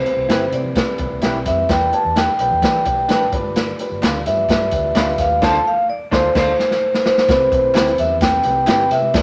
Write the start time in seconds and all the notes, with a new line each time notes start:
Already playing: C5
0.05 C4 E4 G4 B4, closed hi-hat, muted conga
0.17 C2
0.27 G1 C4 E4 G4 B4, snare, closed hi-hat, high conga
0.51 C3 C4 E4 G4 B4 D5, closed hi-hat
0.64 low conga
0.75 C4 E4 G4 B4, kick, snare, closed hi-hat, muted conga
0.98 C2 C4 E4 G4 B4, kick, closed hi-hat, muted conga
1.11 C2
1.22 B1 C4 E4 G4 B4, snare, closed hi-hat, high conga
1.45 F2 C4 E4 G4 B4 E5, kick, snare, closed hi-hat
1.58 high conga
1.68 E2 D4 E4 G4 B4 G5, kick, snare, closed hi-hat
1.92 D4 E4 G4 B4 A5, closed hi-hat, muted conga
2.05 E2
2.16 D4 E4 G4 B4 G5, snare, closed hi-hat, high conga
2.39 B1 D4 E4 G4 B4 G5, closed hi-hat
2.51 E2, low conga
2.62 E3 D4 E4 G4 B4, kick, snare, closed hi-hat, muted conga
2.84 B1 D4 E4 G4 B4, kick, closed hi-hat, muted conga, low conga
3.08 A1 D4 E4 G4 B4 A5, snare, closed hi-hat, high conga
3.32 G1 D4 F4 G4 B4, kick, closed hi-hat
3.44 high conga
3.56 D5, snare, closed hi-hat
3.79 D4 F4 G4 B4, closed hi-hat, tambourine
3.91 G1
4.02 D2 D4 F4 G4 B4, snare, clap, closed hi-hat, tambourine, high conga
4.26 G2 D4 F4 G4 B4 E5, closed hi-hat, tambourine
4.37 low conga
4.49 G2 D4 F4 G4 B4, kick, snare, closed hi-hat, tambourine, muted conga
4.71 D2 D4 F4 G4 B4, kick, closed hi-hat, tambourine, muted conga
4.95 D2 D4 F4 G4 B4, snare, clap, closed hi-hat, tambourine, high conga
5.18 D#2 D4 F4 G4 B4 F5, kick, snare, closed hi-hat, tambourine
5.30 high conga
5.42 D2 D4 F4 A4 C5 A5, kick, snare, crash
5.67 F5
5.90 D5
6.11 D2 D4 F4 A4 C5, kick, snare
6.35 D2 D4 F4 A4 C5, kick, snare, crash
6.60 snare
6.71 snare
6.94 snare
7.00 B4
7.06 C5, snare
7.18 snare
7.28 C2 C4 E4 G4 B4, kick, snare, closed hi-hat, tambourine
7.52 B1 C4 E4 G4 B4, kick, closed hi-hat
7.75 D2 C4 E4 G4 B4, snare, clap, closed hi-hat, tambourine, high conga
7.87 closed hi-hat
7.98 E2 C4 E4 G4 B4 E5, closed hi-hat, tambourine
8.10 low conga
8.21 C4 E4 G4 B4 G5, kick, snare, closed hi-hat, tambourine, muted conga
8.43 C2 C4 E4 G4 B4, closed hi-hat, tambourine, muted conga, low conga
8.67 G1 C4 E4 G4 B4 G5, snare, clap, closed hi-hat, tambourine, high conga
8.90 C3 C4 E4 G4 B4 E5, snare, closed hi-hat, tambourine
9.02 high conga
9.13 E2 D4 E4 G4 B4 D5, kick, snare, closed hi-hat, tambourine